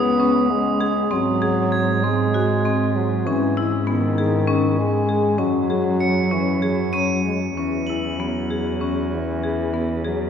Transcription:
Already playing: C#2 B3 G#4 D#6
0.20 C#4
0.50 G#3
0.81 G#4
1.11 G#2 F#3 C4
1.42 G#4
1.72 G#6
2.04 G#3 C4
2.34 F#4
2.65 C4
2.96 F#3
3.26 G#2 E3 C#4
3.57 E4
3.87 D#3 B3
4.18 G#4
4.47 C#4
4.79 G#3
5.09 G#4
5.38 F#2 F#3 C#4
5.70 G#4
6.00 C#7
6.31 E3 C#4
6.62 F#3 G#4
6.93 C#4 D#7
7.25 G#3
7.57 E2 E3 C#4
7.87 E4 F#7
8.19 F#3 B3
8.50 G#4
8.81 C#4
9.15 E3
9.43 G#4
9.74 B3
10.05 F#3 G#4

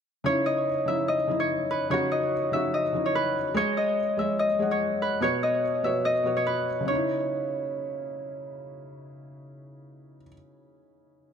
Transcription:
0.24 C#3 C#4 D#4 E4 C#5
0.46 D#5
0.86 C#3 C#4 D#4 E4 E5
1.08 D#5
1.27 C#3 C#4 D#4 E4
1.40 C#5
1.71 B4
1.90 C#3 C#4 D#4 F#4 C#5
2.12 D#5
2.52 C#3 C#4 D#4 F#4 E5
2.74 D#5
2.93 C#3 C#4 D#4 E4
3.06 C#5
3.15 B4
3.54 G#3 G#4 C#5 D#5
3.77 D#5
4.17 G#3 G#4 C#5 D#5 E5
4.39 D#5
4.59 G#3 G#4 C#5 F#5
4.71 C#5
5.02 B4
5.20 B2 B3 F#4 C#5
5.43 D#5
5.83 B2 B3 F#4 C#5 E5
6.05 D#5
6.23 B2 B3 F#4 C#5
6.37 C#5
6.47 B4
6.81 C#3
6.85 C#4 C#5
6.90 D#4
6.95 E4

